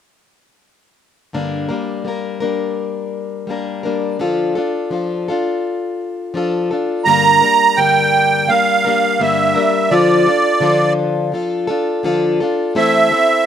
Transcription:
1.33 G2 D3 G3 A#3 D4 A#4
1.69 G3 A#3 D4 A#4
2.05 G3 A#3 D4 A#4
2.40 G3 A#3 D4 A#4
3.47 G3 A#3 D4 A#4
3.83 G3 A#3 D4 A#4
4.19 D3 F3 D4 F4 A4
4.55 D4 F4 A4
4.90 F3 D4 F4 A4
5.28 D4 F4 A4
6.34 F3 D4 F4 A4
6.71 D4 F4 A4
7.05 G2 D3 G3 A#3 D4 A#4 A#5
7.41 G3 A#3 D4 A#4
7.76 G2 D3 G3 A#3 D4 A#4 G5
8.48 G3 A#3 D4 A#4 F5
8.85 G3 A#3 D4 A#4
9.19 G2 D3 G3 A#3 D4 A#4 E5
9.54 G3 A#3 D4 A#4
9.91 D3 F3 D4 F4 A4 D5
10.26 D4 F4 A4
10.60 D3 F3 D4 F4 A4
11.32 F3 D4 F4 A4
11.67 D4 F4 A4
12.03 D3 F3 D4 F4 A4
12.40 D4 F4 A4
12.75 E3 A3 C4 E4 A4 E5
13.11 C4 E4 A4

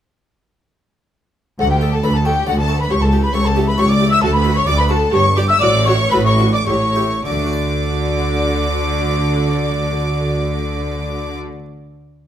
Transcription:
1.59 D2 F#4 A4 F#5
1.70 G4 G5
1.81 A4
1.92 A4 A5
2.03 D2 A4 B4 D5 B5
2.14 A4 A5
2.25 F#4 G4 A4 G5
2.47 D2 F#4 A4 D5 F#5
2.58 A4 A5
2.68 F#4 A4
2.79 B4 B5
2.90 C#2 G4 C#5 C#6
3.01 A4 A5
3.12 G4
3.23 B4 B5
3.34 C#2 G4 A4 C#5 C#6
3.45 A4 A5
3.56 E4 G4
3.67 B4 B5
3.77 C#2 G4 A4 C#5 C#6
3.88 D5 D6
4.00 E4 G4
4.10 E5 E6
4.21 D2 F#4 A4 A5
4.32 B4 B5
4.44 F#4 A4
4.55 C#5 C#6
4.66 D2 F#4 D5 D6
4.77 B4 B5
4.89 F#4 A4 A5
5.12 G1 G2 G4 C#5 C#6
5.36 D4 G4 D5 D6
5.48 E5 E6
5.60 A1 A2 F#4 D5 D6
5.85 F#4 C#5 C#6
6.11 A1 A2 F#4 A4 B4 B5
6.25 C#5 C#6
6.39 D4 F#4
6.52 D5 D6
6.65 A1 A2 G4 C#5 C#6
6.95 E4 G4
7.24 D2 D3 F#4 D5 D6
7.32 A3
7.39 D4
7.46 F#4
7.53 D5

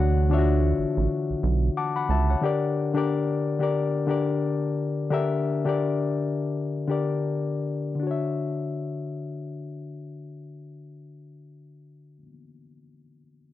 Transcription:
Already playing: D2 D3 E3 D4 F#4 C#5 E5 F#5
0.30 D3 D4 F4 C#5 E5
0.38 F#4
0.79 A1
0.97 A1
1.30 B1
1.43 B1
1.77 F#5 A5 D6
1.96 F#5 B5
2.09 C#2 E5 A5
2.30 C#5 F#5
2.41 D3 D4 G4 A#4
2.45 D5
2.94 D3 D4 G4 A#4 D5
3.59 D3 D4 G4 A#4 D5
4.07 D3 D4 G4 A#4
4.11 D5
5.10 D3 D4 G4 A#4 E5
5.64 D3 D4 G4 A#4
5.69 D5
6.87 D3 D4 G4 A#4
6.91 D5
7.95 D3
7.99 D4 F#4
8.07 C#5 E5

